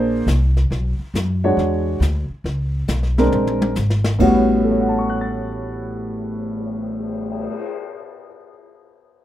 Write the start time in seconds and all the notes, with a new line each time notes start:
Already playing: A#1 A#3 D4 G#4 C5
0.27 C2, snare, hi-hat pedal
0.57 snare
0.70 B1, brush sweep, snare
0.99 muted upright bass stroke
1.14 F#2, snare, hi-hat pedal
1.44 G#3 D4 F#4 C#5
1.57 E2, brush sweep, snare
2.00 D2, snare, hi-hat pedal
2.29 muted upright bass stroke
2.44 C#2, brush sweep, snare
2.88 B1, snare, hi-hat pedal
3.03 snare
3.18 G#3 C4 D4 A#4, snare
3.32 A#1, high tom
3.47 high tom
3.62 high tom
3.75 G#1, snare, hi-hat pedal
3.90 snare
4.04 snare
4.19 A1 A2 G3 B3 C#4 F#4, kick, crash
4.49 cymbal swell
4.64 A4
4.71 C#5
4.80 F#5
4.88 A5
4.98 C#6
5.10 F#6
5.21 A6